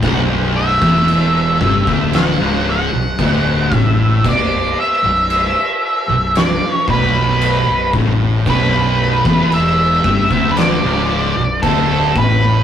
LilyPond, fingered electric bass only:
\new Staff \with { instrumentName = "Fingered electric bass" } { \clef bass \time 4/4 \key b \minor \tempo 4 = 57 b,,,8. e,,8. g,,16 d,,8 cis,,8 b,,,16 d,,8 a,,8 | b,,,8 r16 b,,,8 r8 b,,,8 r16 b,,,8. b,,,16 a,,8 | b,,,8. e,,8. g,,16 d,,8 cis,,8 b,,,16 d,,8 a,,8 | }